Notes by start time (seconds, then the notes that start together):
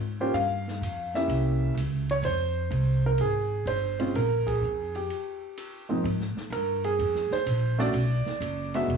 Already playing: G#2
0.20 A#3 C#4 F4 G4 C5
0.33 G2 F5, ride
0.68 snare
0.81 F2, hi-hat pedal, ride
1.14 A#3 C#4 E4 G4 E5, snare
1.28 C2, ride
1.75 C#2, hi-hat pedal, ride
2.09 C#5, ride
2.23 F2 C5, ride
2.70 C2, hi-hat pedal, ride
3.06 A#4
3.18 G#1 G#4, ride
3.66 G1 C5, hi-hat pedal, ride
3.99 G#3 C4 C#4 F4, ride
4.14 A#1 A#4, ride
4.46 G#4, kick, ride
4.61 F2, hi-hat pedal
4.95 G4, ride
5.10 ride
5.57 hi-hat pedal, ride
5.89 G#2 F3 A#3 C4 D#4
6.04 G#2, ride
6.20 snare
6.36 muted upright bass stroke, snare
6.50 G2 A#4, hi-hat pedal, ride
6.84 G#4, ride
6.99 F2, ride
7.15 snare
7.31 C5, muted upright bass stroke, snare
7.46 A#1, hi-hat pedal, ride
7.78 A3 C#4 D4 F#4 D5, snare, ride
7.93 B1, ride
8.25 muted upright bass stroke, snare
8.40 F#1, hi-hat pedal, ride
8.74 G#3 B3 D4 F#4 E5, ride
8.88 E1, ride